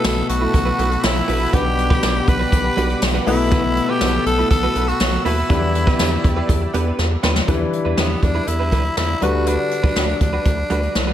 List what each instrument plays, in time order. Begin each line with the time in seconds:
Already playing: grand piano B2 A3 B3 E4 F#4 B4, tenor saxophone A4, analog synth pad A4 F#5 B5 E6
0.04 analog synth bass B1, clean electric guitar A3 E4 F#4 B4, snare, closed hi-hat, tambourine, cowbell
0.16 muted clean electric guitar stroke
0.29 analog synth bass B1, tenor saxophone F#4, muted clean electric guitar stroke, closed hi-hat
0.41 clean electric guitar A3 E4 F#4 B4
0.53 analog synth bass B1, muted clean electric guitar stroke, kick, closed hi-hat, cowbell
0.65 clean electric guitar A3 E4 F#4 B4
0.78 analog synth bass B1, clean electric guitar A3 E4 F#4 B4, closed hi-hat, cowbell
0.91 muted clean electric guitar stroke, closed hi-hat
1.03 analog synth bass B1, tenor saxophone E4, muted clean electric guitar stroke, snare, closed hi-hat, tambourine, cowbell
1.15 muted clean electric guitar stroke, closed hi-hat
1.28 analog synth bass A#1, clean electric guitar A3 E4 F#4 B4, open hi-hat, cowbell
1.40 clean electric guitar A3 E4 F#4 B4
1.52 analog synth bass B1, grand piano B2 G3 B3 D4 B4 F#5, clean electric guitar G3 D4 F#4 B4, analog synth pad G4 D6, tenor saxophone G4, kick, closed hi-hat, cowbell
1.65 muted clean electric guitar stroke
1.78 muted clean electric guitar stroke, closed hi-hat
1.90 clean electric guitar G3 D4 F#4 B4, kick
2.02 analog synth bass B1, clean electric guitar G3 D4 F#4 B4, snare, closed hi-hat, tambourine, cowbell
2.15 muted clean electric guitar stroke
2.27 analog synth bass B1, tenor saxophone B4, muted clean electric guitar stroke, kick, closed hi-hat
2.39 clean electric guitar G3 D4 F#4 B4
2.52 analog synth bass B1, muted clean electric guitar stroke, kick, closed hi-hat, cowbell
2.64 muted clean electric guitar stroke
2.76 analog synth bass B1, clean electric guitar G3 D4 F#4 B4, closed hi-hat, cowbell
2.89 clean electric guitar G3 D4 F#4 B4, closed hi-hat
3.02 analog synth bass B1, muted clean electric guitar stroke, snare, closed hi-hat, tambourine, cowbell
3.14 clean electric guitar G3 D4 F#4 B4, closed hi-hat
3.26 analog synth bass B1, grand piano B2 A3 B3 E4 B4 F#5, clean electric guitar A3 E4 F#4 B4, tenor saxophone E4, analog synth pad A4 E6, open hi-hat, cowbell
3.39 muted clean electric guitar stroke
3.51 clean electric guitar A3 E4 F#4 B4, kick, closed hi-hat, cowbell
3.64 muted clean electric guitar stroke
3.77 muted clean electric guitar stroke, closed hi-hat
3.89 clean electric guitar A3 E4 F#4 B4, tenor saxophone G4
4.01 analog synth bass B1, clean electric guitar A3 E4 F#4 B4, snare, closed hi-hat, tambourine, cowbell
4.14 muted clean electric guitar stroke
4.26 analog synth bass B1, tenor saxophone A4, muted clean electric guitar stroke, closed hi-hat
4.38 clean electric guitar A3 E4 F#4 B4
4.51 analog synth bass B1, tenor saxophone A4, muted clean electric guitar stroke, kick, closed hi-hat, cowbell
4.63 clean electric guitar A3 E4 F#4 B4
4.75 analog synth bass B1, clean electric guitar A3 E4 F#4 B4, closed hi-hat, cowbell
4.88 tenor saxophone F#4, closed hi-hat
5.00 analog synth bass B1, muted clean electric guitar stroke, snare, closed hi-hat, tambourine, cowbell
5.13 muted clean electric guitar stroke, closed hi-hat
5.25 analog synth bass D#2, clean electric guitar A3 E4 F#4 B4, tenor saxophone E4, open hi-hat, cowbell
5.37 clean electric guitar A3 E4 F#4 B4
5.49 analog synth bass E2, grand piano E3 G3 B3 D4 E4 B4, clean electric guitar B3 D4 G4 B4, analog synth pad G4 D5, kick, closed hi-hat, cowbell
5.62 muted clean electric guitar stroke
5.75 muted clean electric guitar stroke, closed hi-hat
5.87 clean electric guitar B3 D4 G4 B4, kick
5.99 analog synth bass E2, clean electric guitar B3 D4 G4 B4, snare, closed hi-hat, tambourine, cowbell
6.12 muted clean electric guitar stroke
6.24 analog synth bass E2, muted clean electric guitar stroke, kick, closed hi-hat
6.36 clean electric guitar B3 D4 G4 B4
6.49 analog synth bass E2, muted clean electric guitar stroke, kick, closed hi-hat, cowbell
6.62 muted clean electric guitar stroke
6.74 analog synth bass E2, clean electric guitar B3 D4 G4 B4, closed hi-hat, cowbell
6.86 clean electric guitar B3 D4 G4 B4
6.99 analog synth bass E2, snare, cowbell
7.11 muted clean electric guitar stroke
7.23 analog synth bass D#2, clean electric guitar B3 D4 G4 B4, snare, cowbell
7.36 muted clean electric guitar stroke, snare
7.47 analog synth bass E2, grand piano E3 G3 D4 E4 B4, clean electric guitar G3 D4 E4 B4, kick, closed hi-hat, cowbell
7.61 muted clean electric guitar stroke
7.73 muted clean electric guitar stroke, closed hi-hat
7.85 analog synth bass E2, clean electric guitar G3 D4 E4 B4
7.97 analog synth bass E2, clean electric guitar G3 D4 E4 B4, tenor saxophone B3, snare, closed hi-hat, cowbell
8.10 muted clean electric guitar stroke
8.22 analog synth bass E2, tenor saxophone D4, muted clean electric guitar stroke, kick, closed hi-hat
8.35 clean electric guitar G3 D4 E4 B4
8.47 analog synth bass E2, tenor saxophone E4, muted clean electric guitar stroke, closed hi-hat, cowbell
8.59 clean electric guitar G3 D4 E4 B4
8.72 analog synth bass D2, clean electric guitar G3 D4 E4 B4, kick, closed hi-hat, cowbell
8.84 muted clean electric guitar stroke, closed hi-hat
8.97 analog synth bass E2, tenor saxophone E4, muted clean electric guitar stroke, snare, closed hi-hat, cowbell
9.09 muted clean electric guitar stroke
9.21 analog synth bass D2, grand piano D3 G3 D4 F#4 B4, clean electric guitar G3 D4 F#4 B4, tenor saxophone F#4, closed hi-hat, cowbell
9.34 clean electric guitar G3 D4 F#4 B4
9.46 clean electric guitar G3 D4 F#4 B4, tenor saxophone D4, closed hi-hat, cowbell
9.59 muted clean electric guitar stroke
9.71 muted clean electric guitar stroke, closed hi-hat
9.83 analog synth bass D2, clean electric guitar G3 D4 F#4 B4, kick
9.96 analog synth bass D2, clean electric guitar G3 D4 F#4 B4, snare, closed hi-hat, cowbell
10.08 muted clean electric guitar stroke
10.20 analog synth bass D2, tenor saxophone D4, muted clean electric guitar stroke, kick, closed hi-hat
10.33 clean electric guitar G3 D4 F#4 B4
10.45 analog synth bass D2, muted clean electric guitar stroke, kick, closed hi-hat, cowbell
10.58 muted clean electric guitar stroke
10.70 analog synth bass D2, clean electric guitar G3 D4 F#4 B4, closed hi-hat, cowbell
10.82 clean electric guitar G3 D4 F#4 B4, closed hi-hat
10.95 analog synth bass C2, muted clean electric guitar stroke, snare, closed hi-hat, cowbell
11.07 clean electric guitar G3 D4 F#4 B4